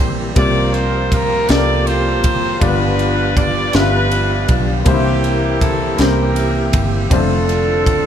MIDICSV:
0, 0, Header, 1, 6, 480
1, 0, Start_track
1, 0, Tempo, 750000
1, 234, Time_signature, 6, 3, 24, 8
1, 5159, End_track
2, 0, Start_track
2, 0, Title_t, "Horn section"
2, 0, Program_c, 0, 61
2, 233, Note_on_c, 0, 74, 115
2, 248, Note_on_c, 0, 65, 86
2, 249, Note_on_c, 0, 70, 84
2, 457, Note_off_c, 0, 74, 0
2, 471, Note_on_c, 0, 72, 101
2, 711, Note_off_c, 0, 70, 0
2, 712, Note_off_c, 0, 72, 0
2, 719, Note_on_c, 0, 70, 104
2, 935, Note_off_c, 0, 65, 0
2, 956, Note_off_c, 0, 70, 0
2, 956, Note_on_c, 0, 74, 111
2, 1193, Note_on_c, 0, 72, 107
2, 1194, Note_off_c, 0, 74, 0
2, 1204, Note_on_c, 0, 65, 87
2, 1207, Note_on_c, 0, 67, 76
2, 1652, Note_off_c, 0, 65, 0
2, 1654, Note_off_c, 0, 67, 0
2, 1673, Note_off_c, 0, 72, 0
2, 1673, Note_on_c, 0, 71, 106
2, 1684, Note_on_c, 0, 62, 94
2, 1686, Note_on_c, 0, 65, 90
2, 2152, Note_off_c, 0, 71, 0
2, 2155, Note_on_c, 0, 74, 118
2, 2372, Note_off_c, 0, 62, 0
2, 2373, Note_off_c, 0, 65, 0
2, 2393, Note_off_c, 0, 74, 0
2, 2394, Note_on_c, 0, 71, 120
2, 2406, Note_on_c, 0, 62, 84
2, 2407, Note_on_c, 0, 65, 82
2, 2933, Note_off_c, 0, 71, 0
2, 3093, Note_off_c, 0, 62, 0
2, 3093, Note_off_c, 0, 65, 0
2, 3116, Note_on_c, 0, 67, 103
2, 3126, Note_on_c, 0, 64, 81
2, 3128, Note_on_c, 0, 58, 86
2, 3568, Note_off_c, 0, 67, 0
2, 3593, Note_on_c, 0, 69, 96
2, 3813, Note_off_c, 0, 64, 0
2, 3814, Note_off_c, 0, 58, 0
2, 3832, Note_off_c, 0, 69, 0
2, 3836, Note_on_c, 0, 70, 102
2, 3842, Note_on_c, 0, 64, 73
2, 3842, Note_on_c, 0, 67, 78
2, 4314, Note_off_c, 0, 70, 0
2, 4531, Note_off_c, 0, 67, 0
2, 4532, Note_off_c, 0, 64, 0
2, 4557, Note_on_c, 0, 69, 127
2, 4560, Note_on_c, 0, 60, 104
2, 4563, Note_on_c, 0, 62, 87
2, 5159, Note_off_c, 0, 60, 0
2, 5159, Note_off_c, 0, 62, 0
2, 5159, Note_off_c, 0, 69, 0
2, 5159, End_track
3, 0, Start_track
3, 0, Title_t, "Grand piano"
3, 0, Program_c, 1, 0
3, 0, Control_c, 1, 64, 127
3, 0, Note_on_c, 1, 48, 75
3, 0, Note_on_c, 1, 58, 70
3, 0, Note_on_c, 1, 60, 66
3, 0, Note_on_c, 1, 64, 61
3, 0, Note_on_c, 1, 67, 68
3, 0, Note_on_c, 1, 72, 99
3, 0, Note_on_c, 1, 74, 79
3, 225, Note_off_c, 1, 58, 0
3, 225, Note_on_c, 1, 58, 80
3, 229, Note_off_c, 1, 60, 0
3, 229, Note_on_c, 1, 60, 78
3, 234, Note_on_c, 1, 65, 74
3, 235, Note_off_c, 1, 48, 0
3, 235, Note_on_c, 1, 48, 67
3, 236, Note_off_c, 1, 67, 0
3, 236, Note_on_c, 1, 67, 80
3, 241, Control_c, 1, 64, 0
3, 243, Note_off_c, 1, 72, 0
3, 243, Note_on_c, 1, 72, 89
3, 244, Note_off_c, 1, 74, 0
3, 247, Note_off_c, 1, 64, 0
3, 350, Control_c, 1, 64, 127
3, 719, Note_off_c, 1, 58, 0
3, 721, Note_off_c, 1, 60, 0
3, 723, Note_off_c, 1, 65, 0
3, 724, Note_off_c, 1, 67, 0
3, 728, Note_off_c, 1, 72, 0
3, 928, Note_off_c, 1, 48, 0
3, 947, Note_on_c, 1, 58, 72
3, 952, Note_on_c, 1, 60, 67
3, 956, Note_on_c, 1, 65, 60
3, 962, Note_on_c, 1, 67, 66
3, 965, Note_on_c, 1, 69, 60
3, 1001, Note_off_c, 1, 69, 0
3, 1009, Note_on_c, 1, 70, 79
3, 1439, Note_off_c, 1, 58, 0
3, 1442, Note_off_c, 1, 60, 0
3, 1444, Note_off_c, 1, 65, 0
3, 1447, Note_off_c, 1, 67, 0
3, 1470, Note_off_c, 1, 70, 0
3, 1663, Note_on_c, 1, 58, 63
3, 1668, Note_on_c, 1, 62, 75
3, 1671, Note_on_c, 1, 65, 80
3, 1675, Note_on_c, 1, 43, 69
3, 1676, Note_on_c, 1, 67, 78
3, 1680, Control_c, 1, 64, 0
3, 1680, Note_on_c, 1, 74, 96
3, 1705, Note_on_c, 1, 59, 87
3, 1709, Note_off_c, 1, 58, 0
3, 1785, Control_c, 1, 64, 127
3, 2159, Note_off_c, 1, 62, 0
3, 2161, Note_off_c, 1, 65, 0
3, 2163, Note_off_c, 1, 67, 0
3, 2166, Note_off_c, 1, 74, 0
3, 2178, Note_off_c, 1, 59, 0
3, 2368, Note_off_c, 1, 43, 0
3, 2386, Note_on_c, 1, 59, 69
3, 2390, Note_on_c, 1, 62, 68
3, 2395, Note_on_c, 1, 65, 67
3, 2400, Note_on_c, 1, 67, 63
3, 2402, Note_on_c, 1, 76, 62
3, 2438, Note_off_c, 1, 76, 0
3, 2447, Note_on_c, 1, 77, 78
3, 2878, Note_off_c, 1, 59, 0
3, 2880, Note_off_c, 1, 62, 0
3, 2883, Note_off_c, 1, 65, 0
3, 2885, Note_off_c, 1, 67, 0
3, 2909, Note_off_c, 1, 77, 0
3, 3101, Note_on_c, 1, 58, 92
3, 3105, Note_on_c, 1, 60, 76
3, 3111, Note_on_c, 1, 62, 63
3, 3112, Note_on_c, 1, 48, 73
3, 3117, Note_on_c, 1, 67, 80
3, 3119, Note_on_c, 1, 72, 100
3, 3121, Control_c, 1, 64, 0
3, 3152, Note_off_c, 1, 62, 0
3, 3153, Note_on_c, 1, 64, 89
3, 3220, Control_c, 1, 64, 127
3, 3596, Note_off_c, 1, 58, 0
3, 3598, Note_off_c, 1, 60, 0
3, 3604, Note_off_c, 1, 67, 0
3, 3605, Note_off_c, 1, 72, 0
3, 3622, Note_off_c, 1, 64, 0
3, 3806, Note_off_c, 1, 48, 0
3, 3819, Note_on_c, 1, 58, 76
3, 3820, Note_on_c, 1, 60, 69
3, 3825, Note_on_c, 1, 64, 64
3, 3831, Note_on_c, 1, 67, 62
3, 3836, Note_on_c, 1, 72, 82
3, 4315, Note_off_c, 1, 58, 0
3, 4316, Note_off_c, 1, 60, 0
3, 4318, Note_off_c, 1, 64, 0
3, 4321, Note_off_c, 1, 67, 0
3, 4323, Note_off_c, 1, 72, 0
3, 4543, Note_on_c, 1, 55, 62
3, 4551, Note_on_c, 1, 60, 82
3, 4554, Note_on_c, 1, 62, 86
3, 4559, Control_c, 1, 64, 0
3, 4559, Note_on_c, 1, 65, 77
3, 4562, Note_on_c, 1, 72, 86
3, 4586, Note_on_c, 1, 57, 79
3, 4589, Note_off_c, 1, 55, 0
3, 4674, Control_c, 1, 64, 127
3, 5042, Note_off_c, 1, 60, 0
3, 5043, Note_off_c, 1, 62, 0
3, 5046, Note_off_c, 1, 65, 0
3, 5047, Note_off_c, 1, 72, 0
3, 5059, Note_off_c, 1, 57, 0
3, 5159, End_track
4, 0, Start_track
4, 0, Title_t, "Tonewheel organ"
4, 0, Program_c, 2, 16
4, 0, Note_on_c, 2, 52, 79
4, 0, Note_on_c, 2, 55, 72
4, 0, Note_on_c, 2, 58, 70
4, 0, Note_on_c, 2, 60, 65
4, 0, Note_on_c, 2, 67, 78
4, 207, Note_off_c, 2, 55, 0
4, 207, Note_off_c, 2, 60, 0
4, 207, Note_off_c, 2, 67, 0
4, 208, Note_off_c, 2, 52, 0
4, 209, Note_off_c, 2, 58, 0
4, 234, Note_on_c, 2, 58, 63
4, 234, Note_on_c, 2, 60, 63
4, 235, Note_on_c, 2, 53, 70
4, 235, Note_on_c, 2, 55, 59
4, 235, Note_on_c, 2, 67, 80
4, 1647, Note_off_c, 2, 53, 0
4, 1647, Note_off_c, 2, 55, 0
4, 1647, Note_off_c, 2, 58, 0
4, 1647, Note_off_c, 2, 60, 0
4, 1647, Note_off_c, 2, 67, 0
4, 1674, Note_on_c, 2, 55, 68
4, 1674, Note_on_c, 2, 67, 75
4, 1676, Note_on_c, 2, 62, 69
4, 1677, Note_on_c, 2, 53, 72
4, 1677, Note_on_c, 2, 59, 68
4, 3086, Note_off_c, 2, 55, 0
4, 3086, Note_off_c, 2, 67, 0
4, 3087, Note_off_c, 2, 62, 0
4, 3088, Note_off_c, 2, 53, 0
4, 3088, Note_off_c, 2, 59, 0
4, 3108, Note_on_c, 2, 60, 68
4, 3109, Note_on_c, 2, 67, 86
4, 3110, Note_on_c, 2, 52, 75
4, 3110, Note_on_c, 2, 55, 65
4, 3111, Note_on_c, 2, 58, 67
4, 4525, Note_off_c, 2, 52, 0
4, 4525, Note_off_c, 2, 55, 0
4, 4525, Note_off_c, 2, 60, 0
4, 4525, Note_off_c, 2, 67, 0
4, 4526, Note_off_c, 2, 58, 0
4, 4543, Note_on_c, 2, 53, 62
4, 4544, Note_on_c, 2, 50, 70
4, 4544, Note_on_c, 2, 60, 62
4, 4546, Note_on_c, 2, 65, 82
4, 4547, Note_on_c, 2, 57, 60
4, 5159, Note_off_c, 2, 50, 0
4, 5159, Note_off_c, 2, 53, 0
4, 5159, Note_off_c, 2, 57, 0
4, 5159, Note_off_c, 2, 60, 0
4, 5159, Note_off_c, 2, 65, 0
4, 5159, End_track
5, 0, Start_track
5, 0, Title_t, "Fingered electric bass"
5, 0, Program_c, 3, 33
5, 0, Note_on_c, 3, 34, 98
5, 215, Note_off_c, 3, 34, 0
5, 234, Note_on_c, 3, 36, 107
5, 928, Note_off_c, 3, 36, 0
5, 954, Note_on_c, 3, 36, 99
5, 1438, Note_off_c, 3, 36, 0
5, 1438, Note_on_c, 3, 29, 99
5, 1656, Note_off_c, 3, 29, 0
5, 1676, Note_on_c, 3, 31, 121
5, 2368, Note_off_c, 3, 31, 0
5, 2396, Note_on_c, 3, 31, 108
5, 2848, Note_off_c, 3, 31, 0
5, 2874, Note_on_c, 3, 35, 100
5, 3093, Note_off_c, 3, 35, 0
5, 3112, Note_on_c, 3, 36, 111
5, 3806, Note_off_c, 3, 36, 0
5, 3833, Note_on_c, 3, 36, 100
5, 4287, Note_off_c, 3, 36, 0
5, 4312, Note_on_c, 3, 31, 92
5, 4533, Note_off_c, 3, 31, 0
5, 4552, Note_on_c, 3, 29, 109
5, 5159, Note_off_c, 3, 29, 0
5, 5159, End_track
6, 0, Start_track
6, 0, Title_t, "Drums"
6, 230, Note_on_c, 9, 51, 83
6, 232, Note_on_c, 9, 36, 124
6, 294, Note_off_c, 9, 51, 0
6, 296, Note_off_c, 9, 36, 0
6, 472, Note_on_c, 9, 51, 38
6, 536, Note_off_c, 9, 51, 0
6, 715, Note_on_c, 9, 36, 100
6, 718, Note_on_c, 9, 51, 71
6, 779, Note_off_c, 9, 36, 0
6, 782, Note_off_c, 9, 51, 0
6, 951, Note_on_c, 9, 51, 76
6, 962, Note_on_c, 9, 38, 127
6, 1015, Note_off_c, 9, 51, 0
6, 1026, Note_off_c, 9, 38, 0
6, 1196, Note_on_c, 9, 51, 56
6, 1260, Note_off_c, 9, 51, 0
6, 1432, Note_on_c, 9, 51, 79
6, 1435, Note_on_c, 9, 36, 111
6, 1496, Note_off_c, 9, 51, 0
6, 1499, Note_off_c, 9, 36, 0
6, 1673, Note_on_c, 9, 36, 124
6, 1673, Note_on_c, 9, 51, 81
6, 1737, Note_off_c, 9, 36, 0
6, 1737, Note_off_c, 9, 51, 0
6, 1914, Note_on_c, 9, 51, 41
6, 1978, Note_off_c, 9, 51, 0
6, 2155, Note_on_c, 9, 36, 107
6, 2156, Note_on_c, 9, 51, 64
6, 2219, Note_off_c, 9, 36, 0
6, 2220, Note_off_c, 9, 51, 0
6, 2388, Note_on_c, 9, 51, 72
6, 2399, Note_on_c, 9, 38, 127
6, 2452, Note_off_c, 9, 51, 0
6, 2463, Note_off_c, 9, 38, 0
6, 2633, Note_on_c, 9, 51, 55
6, 2697, Note_off_c, 9, 51, 0
6, 2870, Note_on_c, 9, 51, 76
6, 2873, Note_on_c, 9, 36, 107
6, 2934, Note_off_c, 9, 51, 0
6, 2937, Note_off_c, 9, 36, 0
6, 3108, Note_on_c, 9, 51, 88
6, 3111, Note_on_c, 9, 36, 123
6, 3172, Note_off_c, 9, 51, 0
6, 3175, Note_off_c, 9, 36, 0
6, 3353, Note_on_c, 9, 51, 42
6, 3417, Note_off_c, 9, 51, 0
6, 3593, Note_on_c, 9, 36, 98
6, 3596, Note_on_c, 9, 51, 66
6, 3657, Note_off_c, 9, 36, 0
6, 3660, Note_off_c, 9, 51, 0
6, 3829, Note_on_c, 9, 51, 70
6, 3840, Note_on_c, 9, 38, 117
6, 3893, Note_off_c, 9, 51, 0
6, 3904, Note_off_c, 9, 38, 0
6, 4071, Note_on_c, 9, 51, 55
6, 4135, Note_off_c, 9, 51, 0
6, 4308, Note_on_c, 9, 51, 85
6, 4311, Note_on_c, 9, 36, 118
6, 4372, Note_off_c, 9, 51, 0
6, 4375, Note_off_c, 9, 36, 0
6, 4551, Note_on_c, 9, 36, 127
6, 4551, Note_on_c, 9, 51, 86
6, 4615, Note_off_c, 9, 36, 0
6, 4615, Note_off_c, 9, 51, 0
6, 4793, Note_on_c, 9, 51, 44
6, 4857, Note_off_c, 9, 51, 0
6, 5033, Note_on_c, 9, 36, 95
6, 5036, Note_on_c, 9, 51, 66
6, 5097, Note_off_c, 9, 36, 0
6, 5100, Note_off_c, 9, 51, 0
6, 5159, End_track
0, 0, End_of_file